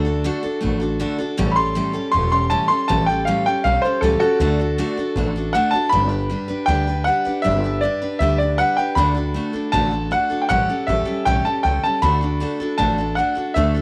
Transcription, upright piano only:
0.00 0.78 A4 loud
1.51 1.54 B5 medium
1.56 1.93 C6 loud
2.12 2.30 C6 medium
2.32 2.51 C6 medium
2.50 2.69 A5 medium
2.68 2.88 C6 loud
2.88 3.07 A5 medium
3.06 3.26 G5 medium
3.25 3.45 F5 medium
3.46 3.64 G5 loud
3.64 3.83 F5 medium
3.82 4.01 C5 medium
4.01 4.19 A4 loud
4.20 5.30 F#4 medium
4.20 5.31 A4 loud
5.53 5.71 F#5 loud
5.71 5.92 A5 loud
5.89 6.69 B5 loud
6.66 7.02 G5 loud
7.04 7.41 F#5 loud
7.42 7.82 E5 loud
7.81 8.21 D5 medium
8.19 8.37 E5 medium
8.38 8.59 D5 medium
8.58 8.78 F#5 loud
8.77 8.97 G5 medium
8.95 9.68 B5 loud
9.72 10.12 A5 loud
10.12 10.44 F#5 medium
10.41 10.49 G5 medium
10.49 10.89 F#5 loud
10.87 11.27 E5 medium
11.25 11.45 G5 loud
11.45 11.65 A5 medium
11.63 11.83 G5 medium
11.84 12.03 A5 medium
12.02 12.75 B5 loud
12.78 13.18 A5 medium
13.15 13.52 F#5 medium
13.54 13.82 E5 medium

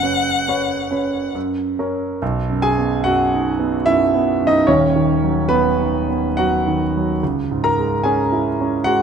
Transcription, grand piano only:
0.00 1.37 F#1 soft
0.00 1.35 F#2 medium
0.00 0.43 C#4 soft
0.00 0.44 B4 soft
0.00 0.44 C#5 soft
0.48 0.88 C#4 soft
0.48 0.88 B4 soft
0.48 0.89 C#5 soft
0.91 1.31 C#4 soft
0.91 1.31 B4 soft
0.91 1.31 C#5 soft
1.35 1.77 F#2 medium
1.79 2.17 C#4 soft
1.79 2.17 A#4 soft
1.79 2.18 C#5 soft
2.22 4.65 B1 medium
2.50 2.94 F#2 medium
2.62 3.02 G#4 medium
2.62 3.04 G#5 loud
2.78 3.22 B3 soft
3.04 3.49 F#2 medium
3.04 3.83 F#4 medium
3.04 3.86 F#5 loud
3.34 3.76 D#4 medium
3.59 4.03 B3 soft
3.86 4.30 F#2 medium
3.86 4.44 E4 medium
3.86 4.47 E5 loud
4.14 4.58 B3 medium
4.42 4.69 F#2 soft
4.47 4.67 D#4 medium
4.47 4.68 D#5 medium
4.67 7.17 D#1 medium
4.67 7.17 D#2 medium
4.67 5.46 C#4 medium
4.67 5.49 C#5 medium
4.96 5.39 D#3 soft
5.24 5.67 F#3 soft
5.49 6.08 B3 medium
5.49 6.37 B4 loud
5.80 6.27 D#4 soft
6.09 6.55 B3 soft
6.37 6.83 F#3 medium
6.37 7.17 F#4 medium
6.37 7.21 F#5 medium
6.67 7.11 D#3 soft
6.97 7.23 F#3 medium
7.23 9.02 C#2 medium
7.51 7.93 G#2 soft
7.64 8.01 A#4 medium
7.64 8.04 A#5 medium
7.78 8.20 G#3 soft
8.03 8.48 C#4 medium
8.03 8.82 G#4 medium
8.03 8.86 G#5 medium
8.32 8.75 E4 medium
8.61 9.02 C#4 soft
8.84 9.02 G#3 medium
8.84 9.02 F#4 medium
8.84 9.02 F#5 loud

